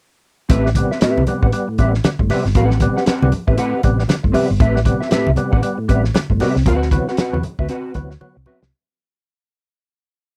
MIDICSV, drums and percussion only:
0, 0, Header, 1, 2, 480
1, 0, Start_track
1, 0, Tempo, 514139
1, 464, Time_signature, 4, 2, 24, 8
1, 9678, End_track
2, 0, Start_track
2, 0, Title_t, "Drums"
2, 463, Note_on_c, 9, 62, 46
2, 463, Note_on_c, 9, 64, 85
2, 464, Note_on_c, 9, 42, 92
2, 465, Note_on_c, 9, 36, 113
2, 557, Note_off_c, 9, 62, 0
2, 557, Note_off_c, 9, 64, 0
2, 558, Note_off_c, 9, 36, 0
2, 558, Note_off_c, 9, 42, 0
2, 619, Note_on_c, 9, 38, 30
2, 701, Note_on_c, 9, 36, 86
2, 702, Note_on_c, 9, 42, 68
2, 707, Note_on_c, 9, 62, 31
2, 707, Note_on_c, 9, 63, 68
2, 713, Note_off_c, 9, 38, 0
2, 795, Note_off_c, 9, 36, 0
2, 795, Note_off_c, 9, 42, 0
2, 801, Note_off_c, 9, 62, 0
2, 801, Note_off_c, 9, 63, 0
2, 857, Note_on_c, 9, 38, 30
2, 942, Note_on_c, 9, 42, 99
2, 950, Note_off_c, 9, 38, 0
2, 950, Note_on_c, 9, 62, 29
2, 952, Note_on_c, 9, 38, 110
2, 1036, Note_off_c, 9, 42, 0
2, 1043, Note_off_c, 9, 62, 0
2, 1046, Note_off_c, 9, 38, 0
2, 1097, Note_on_c, 9, 63, 87
2, 1182, Note_on_c, 9, 42, 60
2, 1185, Note_on_c, 9, 62, 32
2, 1185, Note_on_c, 9, 64, 73
2, 1190, Note_off_c, 9, 63, 0
2, 1276, Note_off_c, 9, 42, 0
2, 1278, Note_off_c, 9, 62, 0
2, 1278, Note_off_c, 9, 64, 0
2, 1331, Note_on_c, 9, 36, 94
2, 1423, Note_on_c, 9, 42, 74
2, 1424, Note_off_c, 9, 36, 0
2, 1516, Note_off_c, 9, 42, 0
2, 1663, Note_on_c, 9, 42, 59
2, 1668, Note_on_c, 9, 36, 78
2, 1757, Note_off_c, 9, 42, 0
2, 1761, Note_off_c, 9, 36, 0
2, 1814, Note_on_c, 9, 38, 33
2, 1905, Note_on_c, 9, 42, 91
2, 1908, Note_off_c, 9, 38, 0
2, 1908, Note_on_c, 9, 62, 34
2, 1908, Note_on_c, 9, 63, 76
2, 1910, Note_on_c, 9, 38, 101
2, 1998, Note_off_c, 9, 42, 0
2, 2001, Note_off_c, 9, 62, 0
2, 2001, Note_off_c, 9, 63, 0
2, 2004, Note_off_c, 9, 38, 0
2, 2047, Note_on_c, 9, 36, 83
2, 2141, Note_off_c, 9, 36, 0
2, 2145, Note_on_c, 9, 46, 78
2, 2146, Note_on_c, 9, 62, 35
2, 2146, Note_on_c, 9, 64, 77
2, 2151, Note_on_c, 9, 38, 33
2, 2238, Note_off_c, 9, 46, 0
2, 2239, Note_off_c, 9, 62, 0
2, 2239, Note_off_c, 9, 64, 0
2, 2244, Note_off_c, 9, 38, 0
2, 2293, Note_on_c, 9, 38, 31
2, 2379, Note_on_c, 9, 42, 90
2, 2383, Note_on_c, 9, 36, 113
2, 2387, Note_off_c, 9, 38, 0
2, 2389, Note_on_c, 9, 62, 47
2, 2389, Note_on_c, 9, 64, 97
2, 2473, Note_off_c, 9, 42, 0
2, 2476, Note_off_c, 9, 36, 0
2, 2482, Note_off_c, 9, 62, 0
2, 2482, Note_off_c, 9, 64, 0
2, 2528, Note_on_c, 9, 38, 30
2, 2614, Note_on_c, 9, 42, 75
2, 2618, Note_on_c, 9, 36, 82
2, 2622, Note_off_c, 9, 38, 0
2, 2623, Note_on_c, 9, 62, 32
2, 2623, Note_on_c, 9, 63, 73
2, 2708, Note_off_c, 9, 42, 0
2, 2712, Note_off_c, 9, 36, 0
2, 2716, Note_off_c, 9, 62, 0
2, 2716, Note_off_c, 9, 63, 0
2, 2774, Note_on_c, 9, 38, 29
2, 2860, Note_on_c, 9, 42, 91
2, 2867, Note_off_c, 9, 38, 0
2, 2870, Note_on_c, 9, 38, 108
2, 2871, Note_on_c, 9, 62, 31
2, 2953, Note_off_c, 9, 42, 0
2, 2963, Note_off_c, 9, 38, 0
2, 2964, Note_off_c, 9, 62, 0
2, 3011, Note_on_c, 9, 63, 86
2, 3099, Note_on_c, 9, 42, 62
2, 3103, Note_on_c, 9, 62, 34
2, 3103, Note_on_c, 9, 64, 77
2, 3104, Note_off_c, 9, 63, 0
2, 3192, Note_off_c, 9, 42, 0
2, 3196, Note_off_c, 9, 62, 0
2, 3196, Note_off_c, 9, 64, 0
2, 3246, Note_on_c, 9, 36, 85
2, 3339, Note_off_c, 9, 36, 0
2, 3339, Note_on_c, 9, 42, 79
2, 3342, Note_on_c, 9, 62, 40
2, 3432, Note_off_c, 9, 42, 0
2, 3436, Note_off_c, 9, 62, 0
2, 3578, Note_on_c, 9, 62, 40
2, 3580, Note_on_c, 9, 42, 52
2, 3583, Note_on_c, 9, 36, 75
2, 3671, Note_off_c, 9, 62, 0
2, 3673, Note_off_c, 9, 42, 0
2, 3676, Note_off_c, 9, 36, 0
2, 3726, Note_on_c, 9, 38, 32
2, 3818, Note_on_c, 9, 62, 37
2, 3818, Note_on_c, 9, 63, 78
2, 3819, Note_off_c, 9, 38, 0
2, 3821, Note_on_c, 9, 42, 96
2, 3826, Note_on_c, 9, 38, 89
2, 3912, Note_off_c, 9, 62, 0
2, 3912, Note_off_c, 9, 63, 0
2, 3914, Note_off_c, 9, 42, 0
2, 3920, Note_off_c, 9, 38, 0
2, 3960, Note_on_c, 9, 36, 80
2, 4053, Note_off_c, 9, 36, 0
2, 4054, Note_on_c, 9, 64, 86
2, 4056, Note_on_c, 9, 46, 68
2, 4148, Note_off_c, 9, 64, 0
2, 4149, Note_off_c, 9, 46, 0
2, 4296, Note_on_c, 9, 36, 122
2, 4296, Note_on_c, 9, 62, 42
2, 4296, Note_on_c, 9, 64, 91
2, 4297, Note_on_c, 9, 42, 103
2, 4389, Note_off_c, 9, 36, 0
2, 4390, Note_off_c, 9, 42, 0
2, 4390, Note_off_c, 9, 62, 0
2, 4390, Note_off_c, 9, 64, 0
2, 4445, Note_on_c, 9, 38, 30
2, 4531, Note_on_c, 9, 36, 87
2, 4533, Note_on_c, 9, 42, 75
2, 4534, Note_on_c, 9, 62, 32
2, 4534, Note_on_c, 9, 63, 67
2, 4538, Note_off_c, 9, 38, 0
2, 4624, Note_off_c, 9, 36, 0
2, 4626, Note_off_c, 9, 42, 0
2, 4628, Note_off_c, 9, 62, 0
2, 4628, Note_off_c, 9, 63, 0
2, 4686, Note_on_c, 9, 38, 30
2, 4770, Note_on_c, 9, 42, 100
2, 4771, Note_on_c, 9, 62, 32
2, 4779, Note_off_c, 9, 38, 0
2, 4780, Note_on_c, 9, 38, 104
2, 4864, Note_off_c, 9, 42, 0
2, 4864, Note_off_c, 9, 62, 0
2, 4874, Note_off_c, 9, 38, 0
2, 4917, Note_on_c, 9, 63, 82
2, 5007, Note_on_c, 9, 62, 36
2, 5007, Note_on_c, 9, 64, 72
2, 5011, Note_off_c, 9, 63, 0
2, 5012, Note_on_c, 9, 42, 58
2, 5101, Note_off_c, 9, 62, 0
2, 5101, Note_off_c, 9, 64, 0
2, 5106, Note_off_c, 9, 42, 0
2, 5160, Note_on_c, 9, 36, 88
2, 5253, Note_off_c, 9, 36, 0
2, 5253, Note_on_c, 9, 62, 36
2, 5256, Note_on_c, 9, 42, 75
2, 5346, Note_off_c, 9, 62, 0
2, 5349, Note_off_c, 9, 42, 0
2, 5498, Note_on_c, 9, 42, 58
2, 5499, Note_on_c, 9, 36, 81
2, 5591, Note_off_c, 9, 42, 0
2, 5592, Note_off_c, 9, 36, 0
2, 5645, Note_on_c, 9, 38, 32
2, 5736, Note_on_c, 9, 62, 34
2, 5736, Note_on_c, 9, 63, 71
2, 5738, Note_off_c, 9, 38, 0
2, 5742, Note_on_c, 9, 42, 83
2, 5747, Note_on_c, 9, 38, 99
2, 5830, Note_off_c, 9, 62, 0
2, 5830, Note_off_c, 9, 63, 0
2, 5835, Note_off_c, 9, 42, 0
2, 5841, Note_off_c, 9, 38, 0
2, 5879, Note_on_c, 9, 36, 67
2, 5973, Note_off_c, 9, 36, 0
2, 5976, Note_on_c, 9, 62, 38
2, 5976, Note_on_c, 9, 64, 82
2, 5979, Note_on_c, 9, 46, 77
2, 5984, Note_on_c, 9, 38, 34
2, 6070, Note_off_c, 9, 62, 0
2, 6070, Note_off_c, 9, 64, 0
2, 6072, Note_off_c, 9, 46, 0
2, 6077, Note_off_c, 9, 38, 0
2, 6125, Note_on_c, 9, 38, 35
2, 6216, Note_on_c, 9, 36, 109
2, 6218, Note_on_c, 9, 42, 100
2, 6219, Note_off_c, 9, 38, 0
2, 6221, Note_on_c, 9, 62, 46
2, 6221, Note_on_c, 9, 64, 94
2, 6310, Note_off_c, 9, 36, 0
2, 6312, Note_off_c, 9, 42, 0
2, 6314, Note_off_c, 9, 62, 0
2, 6314, Note_off_c, 9, 64, 0
2, 6369, Note_on_c, 9, 38, 33
2, 6454, Note_on_c, 9, 36, 87
2, 6454, Note_on_c, 9, 42, 74
2, 6462, Note_off_c, 9, 38, 0
2, 6467, Note_on_c, 9, 62, 33
2, 6467, Note_on_c, 9, 63, 69
2, 6547, Note_off_c, 9, 36, 0
2, 6548, Note_off_c, 9, 42, 0
2, 6560, Note_off_c, 9, 62, 0
2, 6560, Note_off_c, 9, 63, 0
2, 6609, Note_on_c, 9, 38, 32
2, 6697, Note_on_c, 9, 42, 97
2, 6702, Note_off_c, 9, 38, 0
2, 6707, Note_on_c, 9, 38, 124
2, 6707, Note_on_c, 9, 62, 29
2, 6790, Note_off_c, 9, 42, 0
2, 6800, Note_off_c, 9, 38, 0
2, 6801, Note_off_c, 9, 62, 0
2, 6852, Note_on_c, 9, 63, 84
2, 6940, Note_on_c, 9, 42, 60
2, 6940, Note_on_c, 9, 64, 69
2, 6946, Note_off_c, 9, 63, 0
2, 7033, Note_off_c, 9, 42, 0
2, 7033, Note_off_c, 9, 64, 0
2, 7084, Note_on_c, 9, 36, 84
2, 7175, Note_on_c, 9, 42, 75
2, 7178, Note_off_c, 9, 36, 0
2, 7183, Note_on_c, 9, 62, 38
2, 7269, Note_off_c, 9, 42, 0
2, 7277, Note_off_c, 9, 62, 0
2, 7415, Note_on_c, 9, 42, 54
2, 7421, Note_on_c, 9, 36, 77
2, 7508, Note_off_c, 9, 42, 0
2, 7515, Note_off_c, 9, 36, 0
2, 7569, Note_on_c, 9, 38, 36
2, 7662, Note_off_c, 9, 38, 0
2, 7666, Note_on_c, 9, 62, 37
2, 7666, Note_on_c, 9, 63, 69
2, 7759, Note_off_c, 9, 62, 0
2, 7759, Note_off_c, 9, 63, 0
2, 7897, Note_on_c, 9, 62, 38
2, 7897, Note_on_c, 9, 64, 77
2, 7991, Note_off_c, 9, 62, 0
2, 7991, Note_off_c, 9, 64, 0
2, 8053, Note_on_c, 9, 38, 90
2, 8146, Note_off_c, 9, 38, 0
2, 9678, End_track
0, 0, End_of_file